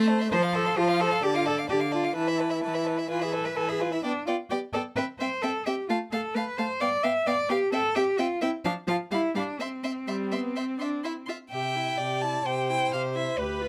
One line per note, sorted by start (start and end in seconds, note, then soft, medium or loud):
0.00 0.26 A3 medium
0.00 0.11 E5 soft
0.08 0.23 C5 medium
0.08 0.20 A5 medium
0.19 0.31 E5 medium
0.19 0.30 C6 soft
0.30 0.72 F3 medium
0.30 0.40 C5 medium
0.30 0.44 C5 medium
0.30 0.44 A5 medium
0.42 0.56 F5 medium
0.42 0.54 C6 medium
0.53 0.79 A4 medium
0.53 0.67 C5 medium
0.53 0.66 A5 medium
0.65 0.77 F5 soft
0.65 0.76 C6 medium
0.77 1.18 F3 medium
0.77 1.02 F4 medium
0.77 0.90 C5 medium
0.77 0.90 A5 medium
0.88 1.02 F5 medium
0.88 1.01 C6 medium
1.00 1.24 A4 medium
1.00 1.13 C5 medium
1.00 1.12 A5 medium
1.11 1.23 F5 soft
1.11 1.21 C6 soft
1.22 1.64 D3 medium
1.22 1.34 G4 medium
1.22 1.37 D5 soft
1.22 1.36 A5 medium
1.34 1.46 F4 medium
1.34 1.48 F5 soft
1.34 1.47 D6 soft
1.45 1.55 A4 medium
1.45 1.60 D5 medium
1.45 1.59 A5 medium
1.57 1.69 F5 soft
1.57 1.68 D6 soft
1.69 2.11 D3 medium
1.69 1.77 G4 medium
1.69 1.82 D5 soft
1.69 1.82 A5 soft
1.80 1.94 F5 soft
1.80 1.93 D6 soft
1.92 2.15 F4 medium
1.92 2.06 D5 soft
1.92 2.05 A5 soft
2.03 2.15 F5 soft
2.03 2.15 D6 soft
2.16 2.58 E3 medium
2.16 3.08 E4 medium
2.16 2.29 B4 soft
2.16 2.28 A5 soft
2.27 2.41 E5 soft
2.27 2.39 B5 soft
2.38 2.52 B4 soft
2.38 2.51 A5 soft
2.49 2.63 E5 soft
2.49 2.62 B5 soft
2.62 3.05 E3 medium
2.62 2.76 B4 soft
2.62 2.75 A5 soft
2.73 2.88 E5 soft
2.73 2.86 B5 soft
2.84 3.00 B4 soft
2.84 2.98 A5 soft
2.96 3.10 E5 soft
2.96 3.08 B5 soft
3.09 3.51 E3 medium
3.09 3.24 F4 medium
3.09 3.23 B4 soft
3.09 3.21 G#5 soft
3.20 3.33 G#4 medium
3.20 3.35 E5 soft
3.20 3.34 B5 soft
3.32 3.47 A4 medium
3.32 3.47 B4 soft
3.32 3.46 G#5 soft
3.44 3.58 B4 medium
3.44 3.57 E5 soft
3.44 3.55 B5 soft
3.55 3.99 E3 soft
3.55 3.71 A4 medium
3.55 3.70 B4 soft
3.55 3.69 G#5 soft
3.68 3.82 G#4 medium
3.68 3.83 E5 soft
3.68 3.81 B5 soft
3.80 3.92 F4 medium
3.80 3.94 B4 soft
3.80 3.93 G#5 soft
3.92 4.03 E4 medium
3.92 4.03 E5 soft
3.92 4.03 B5 soft
4.03 4.12 B3 medium
4.03 4.26 D4 medium
4.03 4.11 D5 soft
4.03 4.12 G5 soft
4.26 4.36 B3 soft
4.26 4.34 F4 medium
4.26 4.35 D5 soft
4.26 4.36 G5 soft
4.50 4.59 B3 soft
4.50 4.58 G4 soft
4.50 4.59 D5 soft
4.50 4.59 G5 soft
4.73 4.82 B3 soft
4.73 4.81 A4 medium
4.73 4.82 D5 soft
4.73 4.82 G5 soft
4.96 5.05 C4 medium
4.96 5.04 B4 medium
4.96 5.05 E5 soft
4.96 5.05 G5 soft
5.19 5.28 C4 medium
5.19 5.43 C5 medium
5.19 5.28 E5 soft
5.19 5.30 G5 soft
5.42 5.51 C4 soft
5.42 5.67 A4 medium
5.42 5.51 E5 soft
5.42 5.52 G5 soft
5.65 5.75 C4 soft
5.65 5.88 G4 medium
5.65 5.74 E5 soft
5.65 5.75 G5 soft
5.88 5.98 A3 medium
5.88 5.96 F4 medium
5.88 5.98 F5 soft
5.88 5.97 A5 medium
6.12 6.20 A3 soft
6.12 6.36 A4 medium
6.12 6.21 F5 soft
6.12 6.22 A5 soft
6.34 6.43 A3 soft
6.34 6.59 B4 medium
6.34 6.44 F5 soft
6.34 6.44 A5 soft
6.57 6.66 A3 soft
6.57 6.82 C5 medium
6.57 6.66 F5 soft
6.57 6.67 A5 soft
6.80 6.89 B3 medium
6.80 7.05 D5 medium
6.80 6.88 F5 soft
6.80 6.89 G5 soft
7.03 7.12 B3 medium
7.03 7.28 E5 medium
7.03 7.12 F5 soft
7.03 7.12 G5 soft
7.26 7.35 B3 medium
7.26 7.51 D5 medium
7.26 7.35 F5 soft
7.26 7.34 G5 soft
7.49 7.57 B3 medium
7.49 7.72 G4 medium
7.49 7.58 F5 soft
7.49 7.58 G5 soft
7.72 7.80 C4 medium
7.72 7.97 A4 medium
7.72 7.80 E5 soft
7.72 7.81 G5 soft
7.95 8.03 C4 medium
7.95 8.20 G4 medium
7.95 8.03 E5 soft
7.95 8.04 G5 soft
8.18 8.27 C4 medium
8.18 8.41 F4 medium
8.18 8.26 E5 soft
8.18 8.27 G5 medium
8.42 8.50 C4 medium
8.42 8.50 E4 medium
8.42 8.50 E5 soft
8.42 8.50 G5 soft
8.65 8.73 F3 medium
8.65 8.73 D4 medium
8.65 8.73 F5 medium
8.65 8.73 A5 medium
8.88 8.96 F3 medium
8.88 8.96 F4 medium
8.88 8.96 F5 medium
8.88 8.97 A5 soft
9.11 9.19 G3 medium
9.11 9.35 E4 medium
9.11 9.19 F5 soft
9.11 9.21 B5 soft
9.35 9.43 G3 soft
9.35 9.62 D4 medium
9.35 9.43 F5 soft
9.35 9.44 B5 soft
9.59 9.67 C4 soft
9.59 11.28 C4 medium
9.59 9.68 E5 soft
9.59 9.68 C6 soft
9.84 9.92 C4 soft
9.84 9.92 E5 soft
9.84 9.92 C6 soft
10.07 10.33 G3 medium
10.07 10.16 E5 soft
10.07 10.16 C6 soft
10.32 10.58 B3 soft
10.32 10.40 E5 soft
10.32 10.40 C6 soft
10.56 10.79 C4 soft
10.56 10.65 E5 soft
10.56 10.64 C6 soft
10.79 11.03 D4 medium
10.79 10.89 E5 soft
10.79 10.87 C6 soft
11.04 11.12 E4 medium
11.04 11.13 E5 soft
11.04 11.12 C6 soft
11.26 11.36 F4 soft
11.26 11.37 E5 soft
11.26 11.34 C6 soft
11.51 11.92 C3 soft
11.51 11.77 G4 soft
11.51 11.99 E5 soft
11.51 12.23 G5 medium
11.76 12.00 E4 soft
11.98 12.40 C3 soft
11.98 12.25 G4 soft
11.98 12.47 D5 soft
12.21 12.46 E4 soft
12.21 12.47 A5 medium
12.44 12.86 C3 soft
12.44 12.71 G4 soft
12.44 13.40 C5 soft
12.44 12.69 G5 medium
12.70 12.95 E4 soft
12.70 12.92 G5 medium
12.92 13.33 C3 soft
12.92 13.17 G4 soft
12.92 13.01 F5 medium
13.15 13.39 E4 soft
13.15 13.40 E5 medium
13.38 13.68 D2 soft
13.38 13.63 G4 soft
13.38 13.68 B4 soft
13.38 13.68 B4 medium
13.61 13.68 F4 soft